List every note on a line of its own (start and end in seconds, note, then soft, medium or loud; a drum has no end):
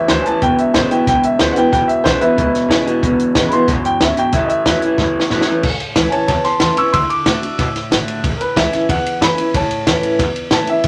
0.00 0.40 E2 medium
0.08 0.21 D2 loud
0.08 0.24 A2 loud
0.08 0.26 E3 medium
0.08 0.24 F#3 medium
0.08 0.26 A3 medium
0.08 0.26 C#4 medium
0.08 0.25 E4 medium
0.08 0.25 C5 loud
0.08 snare loud
0.08 closed hi-hat medium
0.22 0.24 G#5 medium
0.22 closed hi-hat medium
0.26 0.41 A2 medium
0.26 0.41 E3 medium
0.26 0.43 C#4 soft
0.26 0.42 E4 medium
0.26 0.42 A5 loud
0.26 muted upright bass stroke medium
0.42 0.53 E1 medium
0.42 0.72 E2 medium
0.42 1.05 E2 medium
0.42 0.72 B2 medium
0.42 0.58 G5 loud
0.42 kick loud
0.42 closed hi-hat medium
0.58 0.75 E5 medium
0.58 closed hi-hat medium
0.74 0.86 G#1 medium
0.74 0.90 E2 medium
0.74 0.90 C#3 medium
0.74 0.90 E3 medium
0.74 0.91 G#3 medium
0.74 0.91 B3 medium
0.74 0.90 E4 medium
0.74 0.90 C5 medium
0.74 kick medium
0.74 snare loud
0.74 closed hi-hat medium
0.91 1.06 E2 medium
0.91 1.06 B2 medium
0.91 1.08 B3 soft
0.91 1.07 E4 medium
0.91 1.07 G5 medium
0.91 muted upright bass stroke medium
0.91 closed hi-hat medium
1.07 1.18 B1 medium
1.07 1.37 E2 medium
1.07 1.70 B2 medium
1.07 1.37 B2 medium
1.07 1.24 G5 loud
1.07 kick loud
1.07 snare soft
1.07 closed hi-hat medium
1.23 1.40 E5 medium
1.23 muted upright bass stroke medium
1.23 closed hi-hat medium
1.39 1.51 D2 medium
1.39 1.55 E2 medium
1.39 1.55 C#3 medium
1.39 1.56 E3 medium
1.39 1.56 G#3 medium
1.39 1.56 B3 medium
1.39 1.55 E4 loud
1.39 1.56 C5 medium
1.39 snare loud
1.39 closed hi-hat medium
1.52 1.55 F#5 medium
1.52 closed hi-hat medium
1.56 1.71 E2 medium
1.56 1.71 B2 medium
1.56 1.73 B3 soft
1.56 1.72 E4 medium
1.56 1.71 G5 loud
1.56 muted upright bass stroke medium
1.72 1.84 E1 loud
1.72 2.34 E2 medium
1.72 2.02 E2 medium
1.72 2.02 B2 medium
1.72 1.88 G5 loud
1.72 kick loud
1.72 snare soft
1.72 closed hi-hat medium
1.88 2.04 E5 loud
1.88 muted upright bass stroke medium
1.88 closed hi-hat medium
2.04 2.17 B1 medium
2.04 2.20 E2 medium
2.04 2.20 C#3 medium
2.04 2.20 E3 medium
2.04 2.20 G#3 medium
2.04 2.21 B3 medium
2.04 2.21 E4 loud
2.04 2.20 C5 loud
2.04 kick medium
2.04 snare loud
2.04 closed hi-hat medium
2.21 2.36 E2 medium
2.21 2.36 B2 medium
2.21 2.38 B3 soft
2.21 2.37 E4 medium
2.21 2.82 B4 medium
2.21 2.85 E5 medium
2.21 muted upright bass stroke medium
2.21 closed hi-hat medium
2.37 2.49 C#2 loud
2.37 2.67 E2 medium
2.37 2.67 B2 loud
2.37 3.00 B2 medium
2.37 kick loud
2.37 closed hi-hat medium
2.55 snare soft
2.55 closed hi-hat medium
2.68 2.80 E2 medium
2.68 2.85 E2 medium
2.68 2.85 C#3 loud
2.68 2.86 E3 medium
2.68 2.86 G#3 medium
2.68 2.87 B3 medium
2.68 2.86 E4 loud
2.68 snare loud
2.68 closed hi-hat medium
2.86 3.01 E2 medium
2.86 3.01 B2 loud
2.86 3.03 B3 medium
2.86 3.03 E4 medium
2.86 muted upright bass stroke medium
2.86 closed hi-hat medium
3.03 3.14 E1 medium
3.03 3.32 E2 medium
3.03 3.65 E2 medium
3.03 3.32 B2 medium
3.03 kick loud
3.03 closed hi-hat medium
3.19 closed hi-hat medium
3.35 3.47 G#1 medium
3.35 3.50 E2 medium
3.35 3.50 C#3 loud
3.35 3.51 E3 medium
3.35 3.51 G#3 loud
3.35 3.52 B3 medium
3.35 3.51 E4 medium
3.35 kick medium
3.35 snare loud
3.35 closed hi-hat medium
3.48 3.50 B5 medium
3.48 muted upright bass stroke medium
3.48 closed hi-hat medium
3.52 3.67 E2 medium
3.52 3.67 B2 medium
3.52 3.68 B3 medium
3.52 3.68 E4 medium
3.52 3.84 C6 medium
3.68 3.79 B1 loud
3.68 3.98 E2 medium
3.68 3.99 F#2 medium
3.68 3.98 B2 loud
3.68 kick loud
3.68 snare soft
3.68 closed hi-hat medium
3.84 4.01 G5 loud
3.84 muted upright bass stroke medium
3.84 closed hi-hat medium
4.00 4.12 D2 medium
4.00 4.15 E2 medium
4.00 4.32 G#2 medium
4.00 4.16 C#3 loud
4.00 4.18 E5 medium
4.00 snare loud
4.00 closed hi-hat medium
4.17 4.32 E2 medium
4.17 4.32 B2 medium
4.17 4.33 G5 loud
4.17 closed hi-hat medium
4.32 4.44 A1 loud
4.32 4.63 A2 medium
4.32 4.95 A2 medium
4.32 4.63 E3 medium
4.32 4.47 E5 medium
4.32 kick loud
4.32 snare soft
4.32 closed hi-hat medium
4.45 4.47 D#5 medium
4.45 5.44 E5 loud
4.49 closed hi-hat medium
4.65 4.77 E2 medium
4.65 4.81 A2 medium
4.65 4.81 E3 medium
4.65 4.81 F#3 medium
4.65 4.82 A3 medium
4.65 4.82 C#4 medium
4.65 4.81 E4 loud
4.65 kick medium
4.65 snare loud
4.65 closed hi-hat medium
4.80 4.97 A2 medium
4.80 4.98 E3 medium
4.80 4.99 C#4 soft
4.80 4.98 E4 medium
4.80 muted upright bass stroke medium
4.80 closed hi-hat medium
4.98 5.60 E2 medium
4.98 5.09 F#2 loud
4.98 5.28 A2 medium
4.98 5.28 E3 loud
4.98 kick loud
4.98 snare medium
5.14 muted upright bass stroke medium
5.20 snare medium
5.30 5.42 A2 medium
5.30 5.46 A2 medium
5.30 5.46 E3 medium
5.30 5.46 F#3 loud
5.30 5.47 A3 medium
5.30 5.47 C#4 medium
5.30 5.46 E4 loud
5.30 snare medium
5.41 snare medium
5.47 5.62 A2 medium
5.47 5.62 E3 medium
5.47 5.63 C#4 medium
5.47 5.63 E4 medium
5.47 muted upright bass stroke medium
5.63 5.75 A1 loud
5.63 6.26 A2 medium
5.63 kick loud
5.63 crash loud
5.79 muted upright bass stroke medium
5.79 ride medium
5.96 6.07 C#2 medium
5.96 6.12 E3 medium
5.96 6.12 A3 medium
5.96 6.12 C#4 loud
5.96 6.11 E4 medium
5.96 kick medium
5.96 snare loud
5.96 ride medium
6.08 6.25 C#5 medium
6.08 6.10 G#5 medium
6.08 6.26 A5 loud
6.12 6.29 C#4 soft
6.12 6.28 E4 medium
6.12 ride medium
6.27 6.40 E2 loud
6.27 6.91 E2 medium
6.27 6.43 C#5 medium
6.27 6.43 A5 medium
6.27 kick loud
6.27 snare soft
6.27 ride medium
6.44 6.60 A5 medium
6.44 6.60 C6 medium
6.44 muted upright bass stroke medium
6.44 snare soft
6.44 ride medium
6.60 6.73 E2 medium
6.60 6.77 E3 medium
6.60 6.77 A3 medium
6.60 6.77 C#4 medium
6.60 6.76 E4 medium
6.60 6.76 A5 medium
6.60 6.77 C6 medium
6.60 snare loud
6.60 ride medium
6.77 6.93 C#4 medium
6.77 6.93 E4 medium
6.77 6.93 C#6 medium
6.77 6.92 E6 medium
6.77 muted upright bass stroke medium
6.77 ride medium
6.92 7.05 D2 loud
6.92 7.24 D3 medium
6.92 7.08 C6 medium
6.92 7.09 E6 medium
6.92 kick loud
6.92 ride medium
7.10 7.73 D6 medium
7.10 muted upright bass stroke medium
7.10 ride medium
7.26 7.37 A2 loud
7.26 7.42 D3 medium
7.26 7.42 A3 loud
7.26 7.42 D4 medium
7.26 7.41 F#4 loud
7.26 kick medium
7.26 snare loud
7.26 ride medium
7.42 7.59 D4 soft
7.42 7.58 F#4 medium
7.42 ride medium
7.58 8.20 A2 medium
7.58 7.70 B2 medium
7.58 kick loud
7.58 snare soft
7.58 ride medium
7.76 snare soft
7.76 ride medium
7.91 8.02 G#1 medium
7.91 8.22 D3 medium
7.91 8.22 A3 medium
7.91 8.22 D4 loud
7.91 8.23 F#4 medium
7.91 snare loud
7.91 ride medium
8.07 muted upright bass stroke medium
8.07 ride medium
8.24 8.35 A1 medium
8.24 8.86 A2 medium
8.24 kick loud
8.24 ride medium
8.36 8.39 A#4 medium
8.41 8.56 B4 medium
8.41 ride medium
8.56 8.67 C#2 medium
8.56 8.72 E3 medium
8.56 8.72 A3 loud
8.56 8.72 C#4 medium
8.56 8.72 E4 medium
8.56 8.88 E5 medium
8.56 kick medium
8.56 snare loud
8.56 ride medium
8.73 8.89 C#4 medium
8.73 8.89 E4 medium
8.73 snare soft
8.73 ride medium
8.89 9.51 E2 medium
8.89 9.00 E2 medium
8.89 9.21 F#5 medium
8.89 kick loud
8.89 ride medium
9.06 ride medium
9.21 9.32 F#2 loud
9.21 9.37 E3 medium
9.21 9.38 A3 medium
9.21 9.38 C#4 loud
9.21 9.37 E4 medium
9.21 9.54 B5 medium
9.21 snare loud
9.21 ride medium
9.38 9.54 C#4 soft
9.38 9.54 E4 medium
9.38 ride medium
9.54 9.66 A1 medium
9.54 10.17 A2 medium
9.54 10.16 C#5 medium
9.54 10.18 A5 medium
9.54 kick loud
9.54 ride medium
9.69 muted upright bass stroke medium
9.69 ride medium
9.87 9.98 E2 medium
9.87 10.18 E3 medium
9.87 10.18 A3 loud
9.87 10.19 C#4 loud
9.87 10.19 E4 loud
9.87 kick medium
9.87 snare loud
9.87 ride medium
10.02 muted upright bass stroke medium
10.02 ride medium
10.19 10.81 E2 medium
10.19 10.30 F#2 loud
10.19 kick loud
10.19 snare soft
10.19 ride medium
10.36 ride medium
10.51 10.62 A2 medium
10.51 10.67 E3 medium
10.51 10.68 A3 medium
10.51 10.68 C#4 loud
10.51 10.67 E4 medium
10.51 10.68 A5 loud
10.51 snare loud
10.51 ride medium
10.66 10.84 C#4 soft
10.66 10.84 E4 medium
10.66 10.88 E5 loud
10.66 muted upright bass stroke medium
10.66 ride medium
10.84 10.88 D2 loud
10.84 10.88 D3 medium
10.84 kick loud
10.84 ride medium